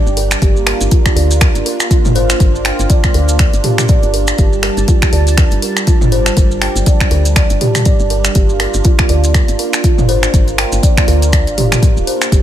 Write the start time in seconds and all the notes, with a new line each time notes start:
Already playing: G3 D4 G4
0.06 G1, maracas
0.17 A#4, open hi-hat
0.31 finger snap, maracas
0.42 G1 A#3 F4 G4, kick, closed hi-hat, maracas
0.57 maracas
0.67 A#4, finger snap, open hi-hat
0.81 G1, closed hi-hat, maracas
0.91 F4, kick, closed hi-hat, maracas
1.06 finger snap, kick, maracas
1.16 D2 D5, open hi-hat
1.31 open hi-hat, maracas
1.41 A#4, finger snap, kick, closed hi-hat, maracas
1.55 G1, closed hi-hat, maracas
1.66 A#4, open hi-hat
1.80 finger snap, maracas
1.90 F4, kick, closed hi-hat, maracas
2.05 G1, mid tom, maracas
2.15 C5, open hi-hat
2.30 finger snap, maracas
2.40 G1 A#4, kick, closed hi-hat, maracas
2.55 maracas
2.65 G5, finger snap, open hi-hat
2.79 G1, closed hi-hat, maracas
2.90 D5, kick, closed hi-hat, maracas
3.04 finger snap, kick, maracas
3.14 D2 A#4, open hi-hat
3.29 closed hi-hat, maracas
3.39 D5, finger snap, kick, closed hi-hat, maracas
3.53 G1, closed hi-hat, maracas
3.64 G4, open hi-hat, mid tom
3.78 finger snap, open hi-hat, mid tom, maracas
3.88 D5, kick, closed hi-hat, maracas
4.03 G1, closed hi-hat, maracas
4.14 A#4, open hi-hat
4.27 finger snap, closed hi-hat, maracas
4.38 G1 G3 G4 A5, kick, closed hi-hat, maracas
4.53 maracas
4.63 A#4, finger snap, open hi-hat
4.77 G1, closed hi-hat, maracas
4.88 F4, kick, closed hi-hat, maracas
5.02 finger snap, kick, maracas
5.13 D2 D5, open hi-hat
5.27 open hi-hat, maracas
5.38 A#4, finger snap, kick, closed hi-hat, maracas
5.51 G1, closed hi-hat, maracas
5.62 A#4, open hi-hat
5.77 finger snap, maracas
5.87 F4, kick, closed hi-hat, maracas
6.01 G1, mid tom, maracas
6.12 C5, open hi-hat
6.26 finger snap, maracas
6.37 G1 A#4, kick, closed hi-hat, maracas
6.51 maracas
6.62 G5, finger snap, open hi-hat
6.76 G1, closed hi-hat, maracas
6.86 D5, kick, closed hi-hat, maracas
7.00 finger snap, kick, maracas
7.11 D2 A#4, open hi-hat
7.25 closed hi-hat, maracas
7.36 D5, finger snap, kick, closed hi-hat, maracas
7.50 G1, closed hi-hat, maracas
7.61 G4, open hi-hat, mid tom
7.75 finger snap, open hi-hat, mid tom, maracas
7.85 D5, kick, closed hi-hat, maracas
8.00 G1, maracas
8.10 A#4, open hi-hat
8.25 finger snap, maracas
8.35 G1 A#3 D4 F4 G4, kick, closed hi-hat, maracas
8.49 maracas
8.60 A#4, finger snap, open hi-hat
8.74 G1, closed hi-hat, maracas
8.84 F4, kick, closed hi-hat, maracas
8.99 finger snap, kick, maracas
9.09 D2 D5, open hi-hat
9.24 open hi-hat, maracas
9.34 A#4, finger snap, kick, closed hi-hat, maracas
9.48 G1, closed hi-hat, maracas
9.59 A#4, open hi-hat
9.73 finger snap, maracas
9.84 F4, kick, closed hi-hat, maracas
9.98 G1, mid tom, maracas
10.09 C5, open hi-hat
10.23 finger snap, maracas
10.33 G1 A#4, kick, closed hi-hat, maracas
10.48 closed hi-hat, maracas
10.58 G5, finger snap, open hi-hat
10.72 G1, closed hi-hat, maracas
10.83 D5, kick, closed hi-hat, maracas
10.97 finger snap, kick, closed hi-hat, maracas
11.08 D2 A#4, open hi-hat
11.22 closed hi-hat, maracas
11.32 D5, finger snap, kick, closed hi-hat, maracas
11.47 G1, closed hi-hat, maracas
11.57 G4, open hi-hat, mid tom
11.72 finger snap, open hi-hat, mid tom, maracas
11.82 A#4, kick, closed hi-hat, maracas
11.97 D1, maracas
12.07 C5, open hi-hat
12.22 finger snap, closed hi-hat, maracas
12.32 G1 G3 D4 G4 A5, kick, closed hi-hat, muted conga, maracas